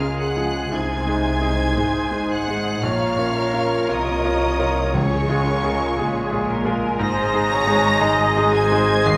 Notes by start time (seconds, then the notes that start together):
Already playing: C#2 C#3 G#3 C#4 G#4 A#4 F5 G#5 F6
0.00 G#3 F4 G#4
0.19 G#4 F#5 F#6
0.36 F3 G#3 G#4
0.70 C2 C3 D#4 C5 G#5 G#6
1.07 G#3 D#4 G#4
1.41 G#3 D#4 G#4
1.78 G#1 G#2 G#3 D#4 G#4
2.11 G#3 D#4 G#4
2.31 F#5 F#6
2.48 G#3 D#4 G#4
2.83 A#1 A#2 A#3 F4 C#5 F5 A#5 F6
3.18 C#4 F4 A#4
3.37 A#4
3.53 C#4 F4 A#4
3.89 C2 C3 F4 A#4 C#5 D#5 D#6
4.24 F4 A#4 C#5
4.59 F4 A#4 C#5
4.93 C#2 C#3 G#3 F4 G#4 C#5 G#5 C#6
5.29 G#3 F4 G#4
5.46 A#4
5.63 G#3 F4 G#4
5.98 A#1 A#2 G#3 F4 G#4
6.31 G#3 F4 G#4
6.48 A#4
6.65 G#3 F4 G#4
6.99 G#1 G#2 G#4 C5 D#5 A#5 A#6
7.34 G#3 D#4 G#4
7.50 C#5
7.67 G#3 D#4 G#4
8.01 G#3 D#4 G#4 D#5
8.36 G#3 D#4 G#4
8.53 C5 G#5 G#6
8.72 G#3 D#4 G#4
9.05 D#2 G#4 C6 C7